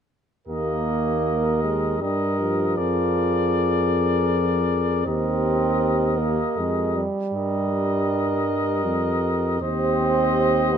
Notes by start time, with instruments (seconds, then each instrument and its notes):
0.48 bass trombone D#2, trombone A#3, french horn G4, flugelhorn A#4, trumpet D#5
1.63 trombone G#3
2.01 bass trombone G2, trombone G3, french horn G4, flugelhorn A#4, trumpet D#5
2.40 trombone F3
2.77 bass trombone F2, french horn G#4, flugelhorn A#4, trumpet D5
5.05 bass trombone D#2, trombone C4, french horn G4, flugelhorn A#4, trumpet D#5
6.20 trombone A#3
6.57 bass trombone F2, trombone G#3
6.95 trombone G3
7.34 bass trombone G2, french horn G4, flugelhorn A#4, trumpet D#5
8.85 bass trombone F2
9.60 bass trombone D#2, trombone C4, french horn G4, flugelhorn C5, trumpet D#5
10.74 trombone A#3